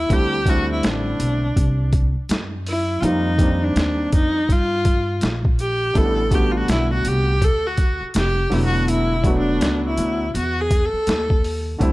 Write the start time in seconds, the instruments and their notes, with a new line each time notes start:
Already playing: viola E4
0.09 upright bass D2, grand piano D3 G3 A3 C4 E4, kick, closed hi-hat
0.13 viola G4
0.45 grand piano D3 G3 A3 C4 E4, viola F#4, kick, closed hi-hat
0.72 viola E4
0.83 upright bass A1, viola D4, snare, closed hi-hat
1.19 upright bass B1, closed hi-hat
1.56 upright bass C2, kick, closed hi-hat
1.93 kick, closed hi-hat
2.15 muted upright bass stroke
2.29 upright bass F#2, snare, closed hi-hat
2.67 viola E4, open hi-hat
3.00 upright bass F2, grand piano D#3 G3 A#3 C4, viola F4, closed hi-hat
3.05 viola D#4, grand piano F4
3.38 grand piano D#3 G3 A#3 C4, kick, closed hi-hat
3.42 grand piano D4
3.64 viola D4
3.76 upright bass D#2, snare, closed hi-hat
4.12 upright bass F2, viola D#4, kick, closed hi-hat
4.49 upright bass G2, viola F4, kick, closed hi-hat
4.85 kick, closed hi-hat
5.21 upright bass A#1, snare, closed hi-hat
5.45 kick
5.59 viola G4, closed hi-hat
5.94 upright bass A1, grand piano D3 G3 A3 B3 E4, viola A4, kick, closed hi-hat
6.30 grand piano D3 G3 A3 B3, viola G4, kick, closed hi-hat
6.35 grand piano F#4
6.51 viola F4
6.57 viola F#4
6.68 upright bass B1, viola E4, snare, closed hi-hat
6.93 viola F#4
7.05 upright bass C2, viola G4, closed hi-hat
7.42 upright bass D2, viola A4, kick, closed hi-hat
7.66 viola F#4
7.77 kick, closed hi-hat
8.01 muted upright bass stroke
8.14 upright bass F1, viola G4, snare, closed hi-hat
8.49 upright bass E1, grand piano D3 F#3 A3 B3 E4, open hi-hat
8.65 viola F#4
8.88 viola E4, closed hi-hat
9.23 grand piano F#3 A3 B3 D4, kick, closed hi-hat
9.27 grand piano F#4
9.39 viola D4
9.61 upright bass C#2, snare, closed hi-hat
9.88 viola E4
9.98 upright bass D2, closed hi-hat
10.34 upright bass E2, viola F#4, closed hi-hat
10.61 viola G#4
10.71 kick, closed hi-hat
10.85 viola A4
10.93 muted upright bass stroke
11.07 upright bass D#2, snare, closed hi-hat
11.30 kick
11.44 open hi-hat
11.78 upright bass D2, grand piano D3 G3 A3 C4, kick, closed hi-hat
11.82 grand piano E4